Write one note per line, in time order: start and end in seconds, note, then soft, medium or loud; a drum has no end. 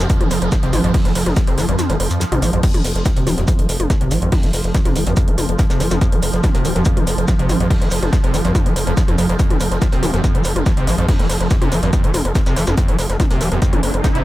0.00 2.62 F3 medium
0.00 shaker medium
0.10 0.22 F2 medium
0.10 kick loud
0.10 closed hi-hat medium
0.10 shaker medium
0.21 0.28 F1 medium
0.21 0.29 F3 loud
0.21 closed hi-hat medium
0.21 mid tom medium
0.31 0.39 F1 loud
0.31 snare soft
0.31 open hi-hat loud
0.31 shaker medium
0.42 0.49 F1 medium
0.42 closed hi-hat medium
0.52 0.56 F2 loud
0.52 kick loud
0.52 snare loud
0.52 closed hi-hat medium
0.52 shaker medium
0.63 0.70 G#1 medium
0.63 0.75 C3 medium
0.63 snare soft
0.63 closed hi-hat soft
0.73 0.81 G#1 loud
0.73 0.82 F3 medium
0.73 snare medium
0.73 open hi-hat medium
0.73 mid tom medium
0.73 shaker medium
0.84 0.91 G#1 medium
0.84 0.93 F2 medium
0.84 closed hi-hat soft
0.94 1.07 F2 medium
0.94 kick loud
0.94 closed hi-hat medium
0.94 open hi-hat medium
1.05 1.13 F1 medium
1.05 1.14 F3 loud
1.05 snare soft
1.05 closed hi-hat medium
1.15 1.23 F1 loud
1.15 open hi-hat loud
1.15 shaker medium
1.26 1.34 F1 medium
1.26 closed hi-hat medium
1.26 mid tom medium
1.36 1.40 F2 loud
1.36 kick loud
1.36 snare loud
1.36 closed hi-hat medium
1.36 shaker medium
1.47 1.55 F1 medium
1.47 1.59 C3 medium
1.47 closed hi-hat medium
1.57 1.66 F1 loud
1.57 1.67 F3 medium
1.57 snare loud
1.57 open hi-hat medium
1.57 shaker medium
1.68 1.76 G1 medium
1.68 1.77 F2 medium
1.68 closed hi-hat medium
1.79 1.91 F2 medium
1.79 snare loud
1.79 closed hi-hat medium
1.79 mid tom medium
1.79 shaker medium
1.89 1.97 F1 medium
1.89 1.98 F3 loud
1.89 closed hi-hat soft
1.89 closed hi-hat medium
2.00 2.08 F1 loud
2.00 open hi-hat loud
2.10 2.18 F2 medium
2.10 closed hi-hat medium
2.10 shaker medium
2.20 2.25 F2 loud
2.20 snare loud
2.20 closed hi-hat medium
2.20 shaker medium
2.32 2.39 G#1 medium
2.32 2.43 C3 medium
2.32 closed hi-hat medium
2.32 mid tom medium
2.42 2.50 G#1 loud
2.42 2.51 F3 medium
2.42 open hi-hat medium
2.42 shaker medium
2.53 2.61 G#1 medium
2.53 2.61 F2 medium
2.53 closed hi-hat medium
2.63 14.24 F3 medium
2.63 kick loud
2.63 closed hi-hat medium
2.63 crash medium
2.63 shaker medium
2.74 2.82 F1 medium
2.74 2.83 F3 loud
2.74 closed hi-hat medium
2.74 mid tom medium
2.84 2.92 F1 loud
2.84 open hi-hat loud
2.84 shaker medium
2.95 3.03 F1 medium
2.95 snare soft
2.95 closed hi-hat medium
3.05 3.12 F2 medium
3.05 kick loud
3.05 snare loud
3.05 closed hi-hat medium
3.05 shaker medium
3.16 3.24 D#1 medium
3.16 3.28 C3 medium
3.16 closed hi-hat soft
3.16 closed hi-hat medium
3.26 3.35 D#1 loud
3.26 3.36 F3 medium
3.26 open hi-hat medium
3.26 mid tom medium
3.26 shaker medium
3.37 3.45 D#1 medium
3.37 3.46 F2 medium
3.37 snare soft
3.37 closed hi-hat medium
3.47 3.60 F2 medium
3.47 kick loud
3.47 closed hi-hat medium
3.47 shaker medium
3.58 3.66 F1 medium
3.58 3.67 F3 loud
3.58 closed hi-hat medium
3.69 3.77 F1 loud
3.69 snare soft
3.69 open hi-hat loud
3.69 shaker medium
3.80 3.87 F1 medium
3.80 closed hi-hat medium
3.80 mid tom medium
3.90 3.96 F2 medium
3.90 kick loud
3.90 snare loud
3.90 closed hi-hat medium
3.90 shaker medium
4.01 4.08 G#1 medium
4.01 4.12 C3 medium
4.01 snare soft
4.01 closed hi-hat medium
4.11 4.19 G#1 loud
4.11 4.20 F3 medium
4.11 snare medium
4.11 open hi-hat medium
4.11 shaker medium
4.22 4.30 G#1 medium
4.22 4.30 F2 medium
4.22 closed hi-hat medium
4.32 4.45 F2 medium
4.32 kick loud
4.32 closed hi-hat medium
4.32 open hi-hat medium
4.32 mid tom medium
4.43 4.51 F1 medium
4.43 4.52 F3 loud
4.43 snare soft
4.43 closed hi-hat medium
4.53 4.61 F1 loud
4.53 open hi-hat loud
4.53 shaker medium
4.64 4.72 F1 medium
4.64 closed hi-hat medium
4.74 4.80 F2 medium
4.74 kick loud
4.74 snare loud
4.74 closed hi-hat medium
4.74 shaker medium
4.85 4.93 F1 medium
4.85 4.97 C3 medium
4.85 closed hi-hat medium
4.85 mid tom medium
4.96 5.04 F1 loud
4.96 5.05 F3 medium
4.96 open hi-hat loud
4.96 shaker medium
5.06 5.14 G1 medium
5.06 5.15 F2 medium
5.06 closed hi-hat medium
5.06 closed hi-hat soft
5.17 5.29 F2 medium
5.17 kick loud
5.17 closed hi-hat medium
5.17 shaker medium
5.28 5.35 F1 medium
5.28 5.36 F3 loud
5.28 closed hi-hat medium
5.38 5.46 F1 loud
5.38 open hi-hat loud
5.38 mid tom medium
5.38 shaker medium
5.49 5.56 F1 medium
5.49 closed hi-hat medium
5.58 5.65 F2 medium
5.58 kick loud
5.58 snare loud
5.58 closed hi-hat medium
5.58 shaker medium
5.70 5.77 F1 medium
5.70 5.82 C3 medium
5.70 snare loud
5.70 closed hi-hat medium
5.70 shaker medium
5.80 5.88 F1 loud
5.80 5.89 F3 medium
5.80 snare loud
5.80 open hi-hat loud
5.80 shaker medium
5.91 5.99 F1 medium
5.91 6.00 F2 medium
5.91 snare loud
5.91 closed hi-hat medium
5.91 mid tom medium
5.91 shaker medium
6.01 kick loud
6.01 closed hi-hat medium
6.01 shaker medium
6.12 6.20 F1 medium
6.12 6.21 F3 loud
6.12 closed hi-hat medium
6.22 6.30 F1 loud
6.22 open hi-hat loud
6.22 shaker medium
6.33 6.41 F1 medium
6.33 snare soft
6.33 closed hi-hat medium
6.43 6.50 F2 medium
6.43 kick loud
6.43 snare loud
6.43 closed hi-hat medium
6.43 mid tom medium
6.43 shaker medium
6.54 6.62 D#1 medium
6.54 6.66 C3 medium
6.54 closed hi-hat soft
6.54 closed hi-hat medium
6.64 6.73 D#1 medium
6.64 6.74 F3 medium
6.64 open hi-hat loud
6.64 shaker medium
6.75 6.83 D#1 medium
6.75 6.84 F2 medium
6.75 snare soft
6.75 closed hi-hat medium
6.85 6.98 F2 medium
6.85 kick loud
6.85 closed hi-hat medium
6.85 shaker medium
6.97 7.04 F1 medium
6.97 7.05 F3 loud
6.97 closed hi-hat medium
6.97 mid tom medium
7.07 7.15 F1 loud
7.07 snare soft
7.07 open hi-hat loud
7.07 shaker medium
7.18 7.25 F1 medium
7.18 closed hi-hat medium
7.28 7.34 F2 medium
7.28 kick loud
7.28 snare loud
7.28 closed hi-hat medium
7.28 shaker medium
7.39 7.46 G#1 medium
7.39 7.51 C3 medium
7.39 snare soft
7.39 closed hi-hat medium
7.49 7.57 G#1 loud
7.49 7.58 F3 medium
7.49 snare medium
7.49 open hi-hat loud
7.49 mid tom medium
7.49 shaker medium
7.60 7.67 G#1 medium
7.60 7.69 F2 medium
7.60 closed hi-hat medium
7.70 7.83 F2 medium
7.70 kick loud
7.70 closed hi-hat medium
7.70 open hi-hat medium
7.81 7.89 F1 medium
7.81 7.90 F3 loud
7.81 snare soft
7.81 closed hi-hat medium
7.91 7.99 F1 loud
7.91 open hi-hat loud
7.91 shaker medium
8.02 8.10 F1 medium
8.02 closed hi-hat medium
8.02 mid tom medium
8.13 8.19 F2 medium
8.13 kick loud
8.13 snare loud
8.13 closed hi-hat medium
8.13 shaker medium
8.23 8.31 F1 medium
8.23 8.35 C3 medium
8.23 closed hi-hat medium
8.34 8.42 F1 loud
8.34 8.43 F3 medium
8.34 open hi-hat loud
8.34 shaker medium
8.44 8.52 G1 medium
8.44 8.53 F2 medium
8.44 closed hi-hat soft
8.44 closed hi-hat medium
8.55 8.67 F2 medium
8.55 kick loud
8.55 closed hi-hat medium
8.55 mid tom medium
8.55 shaker medium
8.66 8.73 F1 medium
8.66 8.74 F3 loud
8.66 closed hi-hat medium
8.76 8.84 F1 loud
8.76 open hi-hat loud
8.76 shaker medium
8.87 8.94 F1 medium
8.87 8.92 F2 loud
8.87 closed hi-hat medium
8.97 9.03 F2 medium
8.97 kick loud
8.97 snare loud
8.97 closed hi-hat medium
8.97 shaker medium
9.08 9.16 F1 medium
9.08 9.16 F2 medium
9.08 closed hi-hat soft
9.08 mid tom medium
9.18 9.26 F1 loud
9.18 9.27 F2 medium
9.18 open hi-hat loud
9.18 shaker medium
9.29 9.37 F1 loud
9.29 9.35 F2 medium
9.29 closed hi-hat soft
9.39 9.51 F2 medium
9.39 kick loud
9.39 closed hi-hat medium
9.39 shaker medium
9.50 9.58 F1 medium
9.50 9.59 F3 loud
9.50 closed hi-hat medium
9.50 mid tom medium
9.60 9.68 F1 loud
9.60 open hi-hat loud
9.60 shaker medium
9.71 9.79 F1 medium
9.71 snare soft
9.71 closed hi-hat medium
9.81 9.88 F2 medium
9.81 kick loud
9.81 snare loud
9.81 closed hi-hat medium
9.81 shaker medium
9.92 10.00 D#1 medium
9.92 10.04 C3 medium
9.92 closed hi-hat soft
10.03 10.11 D#1 loud
10.03 10.12 F3 medium
10.03 open hi-hat medium
10.03 mid tom medium
10.03 shaker medium
10.13 10.21 D#1 medium
10.13 10.22 F2 medium
10.13 snare medium
10.13 closed hi-hat soft
10.24 10.36 F2 medium
10.24 kick loud
10.24 closed hi-hat medium
10.24 shaker medium
10.35 10.42 F1 medium
10.35 10.43 F3 loud
10.35 closed hi-hat soft
10.44 10.53 F1 loud
10.44 snare soft
10.44 open hi-hat loud
10.44 shaker medium
10.56 10.63 F1 medium
10.56 closed hi-hat medium
10.56 mid tom medium
10.66 10.72 F2 medium
10.66 kick loud
10.66 snare loud
10.66 closed hi-hat medium
10.66 shaker medium
10.77 10.84 G#1 medium
10.77 10.89 C3 medium
10.77 snare soft
10.77 closed hi-hat soft
10.87 10.95 G#1 loud
10.87 10.96 F3 medium
10.87 snare medium
10.87 open hi-hat medium
10.87 shaker medium
10.98 11.05 G#1 medium
10.98 11.07 F2 medium
10.98 closed hi-hat soft
11.09 kick loud
11.09 closed hi-hat medium
11.09 open hi-hat medium
11.09 mid tom medium
11.19 11.27 F1 medium
11.19 11.28 F3 loud
11.19 snare soft
11.19 closed hi-hat medium
11.29 11.37 F1 loud
11.29 open hi-hat loud
11.29 shaker medium
11.40 11.48 F1 medium
11.40 closed hi-hat soft
11.50 11.57 F2 medium
11.50 kick loud
11.50 snare loud
11.50 closed hi-hat medium
11.50 shaker medium
11.62 11.69 F1 medium
11.62 11.73 C3 medium
11.62 closed hi-hat soft
11.62 mid tom medium
11.72 11.80 F1 loud
11.72 11.81 F3 medium
11.72 open hi-hat medium
11.72 shaker medium
11.83 11.90 G1 medium
11.83 11.91 F2 medium
11.83 closed hi-hat medium
11.83 closed hi-hat soft
11.93 12.06 F2 medium
11.93 kick loud
11.93 closed hi-hat medium
11.93 shaker medium
12.04 12.11 F1 medium
12.04 12.12 F3 loud
12.04 closed hi-hat soft
12.14 12.22 F1 loud
12.14 open hi-hat loud
12.14 mid tom medium
12.14 shaker medium
12.25 12.32 F1 medium
12.25 closed hi-hat medium
12.35 12.41 F2 medium
12.35 kick loud
12.35 snare loud
12.35 closed hi-hat medium
12.35 shaker medium
12.46 12.54 F1 medium
12.46 12.58 C3 medium
12.46 snare loud
12.46 closed hi-hat soft
12.46 shaker medium
12.56 12.64 F1 loud
12.56 12.65 F3 medium
12.56 snare loud
12.56 open hi-hat medium
12.56 shaker medium
12.67 12.75 F1 medium
12.67 12.76 F2 medium
12.67 snare loud
12.67 closed hi-hat medium
12.67 mid tom medium
12.67 shaker medium
12.77 12.90 F2 medium
12.77 kick loud
12.77 closed hi-hat medium
12.77 riser medium
12.77 shaker medium
12.88 12.96 F1 medium
12.88 12.97 F3 loud
12.88 closed hi-hat medium
12.99 13.07 F1 loud
12.99 open hi-hat loud
12.99 shaker medium
13.09 13.17 F1 medium
13.09 snare medium
13.09 closed hi-hat medium
13.20 13.26 F2 medium
13.20 kick loud
13.20 snare loud
13.20 closed hi-hat medium
13.20 mid tom medium
13.20 shaker medium
13.31 13.38 D#1 medium
13.31 13.42 C3 medium
13.31 closed hi-hat medium
13.31 closed hi-hat soft
13.41 13.49 D#1 loud
13.41 13.50 F3 medium
13.41 open hi-hat medium
13.41 shaker medium
13.52 13.59 D#1 medium
13.52 13.60 F2 medium
13.52 snare soft
13.52 closed hi-hat soft
13.62 13.74 F2 medium
13.62 kick loud
13.62 closed hi-hat medium
13.62 shaker medium
13.73 13.80 F1 medium
13.73 13.81 F3 loud
13.73 closed hi-hat medium
13.73 mid tom medium
13.83 13.91 F1 loud
13.83 open hi-hat loud
13.94 14.01 F1 medium
13.94 closed hi-hat medium
14.04 14.10 F2 medium
14.04 kick loud
14.04 snare loud
14.04 closed hi-hat medium
14.04 shaker medium
14.15 14.22 G#1 medium
14.15 14.24 C3 medium
14.15 snare soft
14.15 closed hi-hat soft